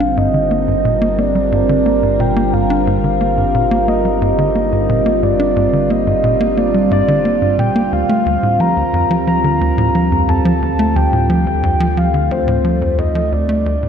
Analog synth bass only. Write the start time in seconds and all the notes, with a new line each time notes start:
0.00 D4
0.17 G2
0.34 D3
0.51 A#3
0.68 G2
0.85 A#2
1.02 A#3
1.19 A#3
1.35 G3
1.52 G2
1.69 D3
1.86 A#3
2.03 G2
2.20 A#2
2.36 A#3
2.53 G2
2.70 D4
2.87 G2
3.04 D3
3.21 A#3
3.38 G2
3.55 A#2
3.71 A#3
3.88 A#3
4.05 G3
4.22 G2
4.38 D3
4.55 A#3
4.72 G2
4.89 A#2
5.06 A#3
5.23 G2
5.40 D4
5.56 G2
5.73 D3
5.90 A#3
6.07 G2
6.24 A#2
6.41 A#3
6.57 A#3
6.74 G3
6.91 G2
7.08 D3
7.25 A#3
7.42 G2
7.59 A#2
7.76 A#3
7.92 D2
8.09 A3
8.26 D2
8.43 A2
8.60 F3
8.77 D2
8.94 F2
9.11 F3
9.27 F3
9.44 D3
9.61 D2
9.78 A2
9.95 F3
10.12 F2
10.28 F2
10.45 F3
10.62 D2
10.79 A3
10.96 D2
11.13 A2
11.30 F3
11.47 D2
11.63 F2
11.80 F3
11.97 F3
12.14 D3
12.31 D2
12.48 A2
12.65 F3
12.82 F2
12.98 F2
13.15 F3
13.32 D2
13.49 A3
13.66 D2
13.83 A2